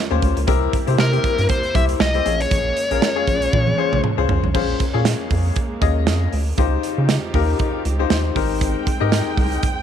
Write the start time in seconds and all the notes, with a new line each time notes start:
Already playing: A#3 C#4 F4
0.11 D#2 C#4 F4 G4 C5
0.22 D2, kick, closed hi-hat
0.37 C#2, closed hi-hat
0.47 C2 C3 G3 C4 E4 G4 A#4, kick, closed hi-hat
0.73 kick, closed hi-hat
0.87 C3 C4 E4 G4 C5, closed hi-hat
0.99 C3 A#4, snare
1.12 C4 E4 G4 A#4, closed hi-hat
1.24 kick, closed hi-hat
1.38 G2, closed hi-hat
1.49 C5, kick, closed hi-hat
1.63 closed hi-hat
1.74 C2 C4 E4 G4 C5 E5, kick, closed hi-hat
1.89 closed hi-hat
2.00 C2 D#5, snare
2.14 C4 E4 G4 C5, closed hi-hat
2.25 A#1 C#3 G#3 C#4 F4 G#4 C#5, closed hi-hat
2.41 C#5, closed hi-hat
2.51 A#1, kick, closed hi-hat
2.77 closed hi-hat
2.91 A#1 C#4 F4 G#4 A#4, closed hi-hat
3.02 snare
3.16 C#4 F4 G#4 C#5
3.27 A#1, kick, closed hi-hat
3.42 closed hi-hat
3.53 A#2, kick, high tom
3.67 high tom
3.78 C#4 F4 G#4 C5
3.93 A#1, mid tom
4.04 mid tom
4.17 C#2 C#4 F4 G#4 C5
4.29 C2, floor tom
4.43 B1, floor tom
4.54 A#1 C#3 G#3 A#3 C#4 F4 G#4 C5, kick, crash
4.80 kick, closed hi-hat
4.93 A#2 C#4 F4 G#4 C#5
5.05 snare, closed hi-hat
5.30 F2, kick, open hi-hat
5.56 kick, closed hi-hat
5.81 D#2 C#4 F4 G#4 D#5, kick, closed hi-hat
6.07 F2, snare, closed hi-hat
6.33 D2, open hi-hat
6.57 C#2 C#3 C4 D#4 F4 G4 C5, kick, closed hi-hat
6.83 closed hi-hat
6.98 C#3
7.09 snare, closed hi-hat
7.34 D#2 D#4 F4 G4 A#4, kick, open hi-hat
7.59 kick, closed hi-hat
7.85 C#2, closed hi-hat
7.99 D#4 F4 G4 C5
8.10 D#2, snare, closed hi-hat
8.35 G#1 G#3 D#4 G4 A#4 C5 G5, kick, open hi-hat
8.61 kick, closed hi-hat
8.87 kick, closed hi-hat
9.00 G#2 D#4 G4 A#4 D#5
9.12 snare, closed hi-hat
9.37 C2, kick, open hi-hat
9.52 closed hi-hat
9.63 kick, closed hi-hat